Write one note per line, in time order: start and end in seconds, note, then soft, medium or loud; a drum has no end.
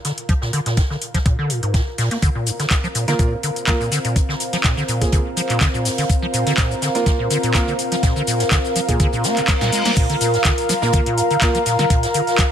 0.00 12.52 F4 medium
0.00 12.52 A#4 medium
0.00 12.52 F5 medium
0.00 12.52 A#5 medium
0.05 0.12 D3 medium
0.05 snare soft
0.05 closed hi-hat medium
0.05 open hi-hat loud
0.18 closed hi-hat medium
0.29 0.33 F3 medium
0.29 kick loud
0.29 closed hi-hat medium
0.29 closed hi-hat soft
0.41 0.51 A#2 medium
0.41 snare medium
0.53 0.60 D3 medium
0.53 closed hi-hat medium
0.53 open hi-hat loud
0.66 0.79 A#2 medium
0.66 snare medium
0.66 closed hi-hat medium
0.77 0.82 G#2 loud
0.77 kick loud
0.77 snare loud
0.77 closed hi-hat medium
0.90 0.97 D3 medium
0.90 snare soft
1.02 closed hi-hat medium
1.02 open hi-hat loud
1.14 1.18 F3 loud
1.14 kick medium
1.14 snare soft
1.14 closed hi-hat medium
1.26 1.36 A#2 medium
1.26 kick loud
1.26 closed hi-hat soft
1.26 closed hi-hat medium
1.39 1.51 D3 loud
1.50 1.61 A#2 medium
1.50 closed hi-hat medium
1.50 open hi-hat loud
1.63 1.76 G#2 medium
1.63 closed hi-hat medium
1.74 1.81 A#2 medium
1.74 kick loud
1.74 snare loud
1.74 closed hi-hat soft
1.74 closed hi-hat medium
1.98 2.09 A#2 loud
1.98 snare soft
1.98 open hi-hat medium
1.98 open hi-hat loud
2.11 2.17 A#3 medium
2.11 snare soft
2.11 closed hi-hat medium
2.22 2.30 D3 loud
2.22 9.98 C4 medium
2.22 9.98 C5 medium
2.22 kick loud
2.22 closed hi-hat medium
2.22 closed hi-hat soft
2.22 cabasa soft
2.35 2.48 A#2 medium
2.47 2.51 G#2 loud
2.47 closed hi-hat medium
2.47 open hi-hat loud
2.47 cabasa medium
2.59 2.66 D3 medium
2.59 snare medium
2.59 closed hi-hat medium
2.59 cabasa soft
2.70 kick loud
2.70 snare loud
2.70 clap loud
2.70 closed hi-hat medium
2.70 cabasa soft
2.84 2.87 F3 loud
2.84 cabasa soft
2.95 3.06 A#2 medium
2.95 closed hi-hat medium
2.95 open hi-hat loud
2.95 cabasa medium
3.08 3.14 D3 loud
3.08 3.27 A#3 medium
3.08 3.27 F4 medium
3.08 3.27 A#4 loud
3.08 snare medium
3.08 closed hi-hat medium
3.08 cabasa soft
3.19 3.34 A#2 medium
3.19 kick loud
3.19 closed hi-hat medium
3.19 closed hi-hat soft
3.19 cabasa soft
3.32 3.36 G#2 loud
3.43 3.51 D3 medium
3.43 closed hi-hat medium
3.43 open hi-hat loud
3.43 cabasa medium
3.56 closed hi-hat medium
3.56 cabasa soft
3.67 3.72 F3 loud
3.67 3.81 A#3 medium
3.67 3.81 F4 medium
3.67 3.81 A#4 loud
3.67 kick loud
3.67 snare loud
3.67 clap loud
3.67 closed hi-hat medium
3.67 cabasa soft
3.80 3.90 A#2 medium
3.80 cabasa soft
3.92 3.99 D3 loud
3.92 snare soft
3.92 closed hi-hat medium
3.92 open hi-hat loud
3.92 cabasa medium
4.05 4.17 A#2 medium
4.05 closed hi-hat medium
4.05 cabasa soft
4.16 4.20 G#2 loud
4.16 kick loud
4.16 closed hi-hat medium
4.16 cabasa soft
4.29 4.35 D3 medium
4.29 snare medium
4.40 closed hi-hat medium
4.40 open hi-hat loud
4.40 cabasa medium
4.53 4.57 F3 loud
4.53 snare medium
4.53 closed hi-hat medium
4.53 cabasa soft
4.64 4.75 A#2 medium
4.64 kick loud
4.64 snare loud
4.64 clap loud
4.64 closed hi-hat medium
4.64 cabasa soft
4.77 4.83 D3 loud
4.77 snare soft
4.77 cabasa soft
4.88 5.03 A#2 medium
4.88 closed hi-hat medium
4.88 open hi-hat loud
4.88 cabasa medium
5.01 5.05 G#2 loud
5.01 5.21 A#3 medium
5.01 5.21 F4 medium
5.01 5.21 G#4 medium
5.01 kick medium
5.01 snare soft
5.01 closed hi-hat medium
5.01 cabasa soft
5.12 5.20 D3 medium
5.12 kick loud
5.12 closed hi-hat medium
5.12 cabasa soft
5.37 5.41 F3 loud
5.37 closed hi-hat medium
5.37 open hi-hat medium
5.37 cabasa medium
5.49 5.59 A#2 medium
5.49 clap soft
5.49 closed hi-hat medium
5.49 cabasa soft
5.61 5.68 D3 loud
5.61 kick loud
5.61 snare loud
5.61 clap loud
5.61 closed hi-hat medium
5.61 cabasa soft
5.74 5.87 A#2 medium
5.74 cabasa soft
5.85 5.90 G#2 loud
5.85 snare medium
5.85 open hi-hat loud
5.85 open hi-hat medium
5.85 cabasa medium
5.98 6.04 D3 medium
5.98 snare soft
5.98 closed hi-hat medium
5.98 cabasa soft
6.09 kick loud
6.09 closed hi-hat medium
6.09 cabasa soft
6.22 6.26 F3 loud
6.34 6.44 A#2 medium
6.34 closed hi-hat medium
6.34 open hi-hat loud
6.34 cabasa medium
6.47 6.53 D3 loud
6.47 snare medium
6.47 closed hi-hat medium
6.47 cabasa soft
6.57 6.72 A#2 medium
6.57 kick loud
6.57 snare loud
6.57 clap loud
6.57 closed hi-hat medium
6.57 cabasa soft
6.71 6.75 G#2 loud
6.71 cabasa soft
6.82 6.89 D3 medium
6.82 snare loud
6.82 closed hi-hat medium
6.82 open hi-hat loud
6.82 cabasa medium
6.95 7.14 A#3 loud
6.95 7.14 F4 medium
6.95 7.14 A#4 loud
6.95 snare medium
6.95 closed hi-hat medium
6.95 cabasa soft
7.06 7.11 F3 loud
7.06 kick loud
7.06 snare loud
7.06 closed hi-hat medium
7.06 cabasa soft
7.19 7.29 A#2 medium
7.30 7.38 D3 loud
7.30 closed hi-hat medium
7.30 open hi-hat loud
7.30 cabasa medium
7.43 7.56 A#2 medium
7.43 closed hi-hat medium
7.43 cabasa soft
7.54 7.59 G#2 loud
7.54 7.68 A#3 loud
7.54 7.68 F4 medium
7.54 7.68 A#4 loud
7.54 kick loud
7.54 snare loud
7.54 clap loud
7.54 closed hi-hat medium
7.54 cabasa soft
7.68 7.74 D3 medium
7.68 cabasa soft
7.78 closed hi-hat medium
7.78 open hi-hat loud
7.78 cabasa medium
7.92 7.96 F3 loud
7.92 snare soft
7.92 closed hi-hat medium
7.92 cabasa soft
8.03 8.14 A#2 medium
8.03 kick loud
8.03 snare loud
8.03 closed hi-hat medium
8.03 cabasa soft
8.16 8.22 D3 loud
8.16 cabasa soft
8.27 8.42 A#2 medium
8.27 closed hi-hat medium
8.27 open hi-hat loud
8.27 cabasa medium
8.39 8.44 G#2 loud
8.39 snare medium
8.39 closed hi-hat medium
8.39 cabasa soft
8.51 8.59 D3 medium
8.51 kick loud
8.51 snare loud
8.51 clap loud
8.51 closed hi-hat medium
8.51 cabasa soft
8.65 snare soft
8.65 cabasa soft
8.76 8.80 F3 loud
8.76 closed hi-hat medium
8.76 open hi-hat loud
8.76 cabasa medium
8.89 8.98 A#2 medium
8.89 9.08 A#3 medium
8.89 9.08 F4 medium
8.89 9.08 G#4 medium
8.89 kick medium
8.89 closed hi-hat medium
8.89 cabasa soft
8.99 9.07 D3 loud
8.99 kick loud
8.99 closed hi-hat medium
8.99 reverse cymbal medium
8.99 cabasa soft
9.13 9.26 A#2 medium
9.13 cabasa soft
9.24 9.39 A#3 loud
9.24 snare loud
9.24 closed hi-hat medium
9.24 open hi-hat loud
9.24 cabasa medium
9.36 9.41 G#2 medium
9.36 clap soft
9.36 closed hi-hat medium
9.36 cabasa soft
9.48 kick loud
9.48 snare medium
9.48 snare soft
9.48 clap loud
9.48 closed hi-hat medium
9.48 open hi-hat medium
9.48 cabasa soft
9.61 9.71 A#2 loud
9.61 snare medium
9.61 snare loud
9.61 closed hi-hat medium
9.61 cabasa soft
9.72 9.83 G#3 medium
9.72 open hi-hat loud
9.72 cabasa medium
9.85 9.92 A#3 loud
9.85 snare soft
9.85 snare medium
9.85 closed hi-hat medium
9.85 open hi-hat medium
9.85 cabasa soft
9.97 10.07 A#2 medium
9.97 12.52 F4 medium
9.97 12.52 F5 medium
9.97 kick loud
9.97 closed hi-hat medium
9.97 crash loud
9.97 cabasa soft
10.10 10.16 D3 loud
10.10 closed hi-hat medium
10.21 10.35 A#2 medium
10.21 closed hi-hat medium
10.21 open hi-hat loud
10.21 cabasa medium
10.34 10.38 G#2 loud
10.34 snare medium
10.34 closed hi-hat soft
10.34 cabasa soft
10.44 10.52 D3 medium
10.44 kick loud
10.44 snare loud
10.44 clap loud
10.44 closed hi-hat medium
10.44 cabasa soft
10.58 closed hi-hat medium
10.58 cabasa soft
10.69 10.74 F3 loud
10.69 snare medium
10.69 closed hi-hat medium
10.69 open hi-hat loud
10.69 cabasa medium
10.82 10.91 A#2 medium
10.82 11.02 A#3 loud
10.82 11.02 F4 medium
10.82 11.02 A#4 loud
10.82 snare medium
10.82 cabasa soft
10.93 11.01 D3 loud
10.93 kick loud
10.93 closed hi-hat medium
10.93 cabasa soft
11.06 11.19 A#2 medium
11.06 closed hi-hat medium
11.18 11.22 G#2 loud
11.18 closed hi-hat medium
11.18 open hi-hat loud
11.18 cabasa medium
11.31 11.37 D3 medium
11.31 closed hi-hat soft
11.31 cabasa soft
11.41 11.55 A#3 loud
11.41 11.55 F4 loud
11.41 11.55 A#4 loud
11.41 kick loud
11.41 snare loud
11.41 clap loud
11.41 closed hi-hat medium
11.41 cabasa soft
11.55 11.58 F3 loud
11.55 closed hi-hat medium
11.55 cabasa soft
11.66 11.77 A#2 medium
11.66 snare soft
11.66 closed hi-hat medium
11.66 open hi-hat loud
11.66 cabasa medium
11.79 11.85 D3 loud
11.79 snare medium
11.79 closed hi-hat soft
11.79 cabasa soft
11.90 12.05 A#2 medium
11.90 kick loud
11.90 closed hi-hat medium
11.90 closed hi-hat loud
11.90 cabasa soft
12.03 12.07 G#2 loud
12.03 snare medium
12.03 closed hi-hat medium
12.03 cabasa soft
12.14 12.22 D3 medium
12.14 closed hi-hat medium
12.14 open hi-hat loud
12.14 cabasa medium
12.27 snare medium
12.27 closed hi-hat soft
12.27 cabasa soft
12.38 12.43 F3 loud
12.38 kick loud
12.38 snare loud
12.38 clap loud
12.38 closed hi-hat medium
12.38 closed hi-hat loud
12.38 cabasa soft